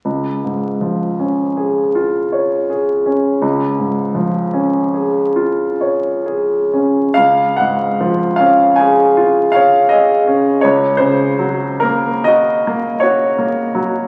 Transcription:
\new Staff \with { instrumentName = "Grand piano" } { \time 9/8 \key des \major \tempo 4. = 53 << { r1 r8 | r1 r8 | f''8 ges''4 f''8 aes''4 f''8 ees''4 | des''8 c''4 bes'8 ees''4 des''4. | } \\ { des,8 aes,8 f8 des'8 aes'8 f'8 des''8 aes'8 des'8 | des,8 aes,8 f8 des'8 aes'8 f'8 des''8 aes'8 des'8 | des,8 aes,8 f8 des'8 aes'8 f'8 des''8 aes'8 des'8 | des,8 des8 ges8 bes8 ges'8 bes8 ges'8 bes8 ges8 | } >> }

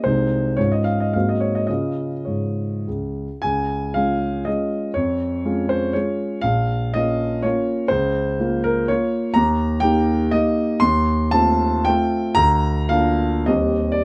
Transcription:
\new Staff \with { instrumentName = "Grand piano" } { \time 3/4 \key des \major \tempo 4 = 118 << { c''4 des''16 ees''16 f''16 ees''16 f''16 ees''16 des''16 ees''16 | ees''4 des''4 r4 | aes''4 f''4 ees''4 | des''4. c''8 des''4 |
f''4 ees''4 des''4 | c''4. bes'8 des''4 | \key bes \major bes''4 g''4 ees''4 | c'''4 a''4 g''4 |
bes''4 f''4 ees''8. d''16 | } \\ { <c, aes ees' aes'>4 <aes, aes des' f'>4 <aes, bes c' ges'>4 | <des des' f'>4 aes,4 des,4 | des,4 <aes des' f'>4 <aes des' f'>4 | f,4 <aes des' f'>4 <aes des' f'>4 |
bes,,4 <bes des' f'>4 <bes des' f'>4 | des,4 <bes f'>4 <bes f'>4 | ees,4 <bes ees' g'>4 <bes ees' g'>4 | ees,4 <a c' f'>4 <a c' f'>4 |
d,4 <bes d' f'>4 <ees, g c' g'>4 | } >> }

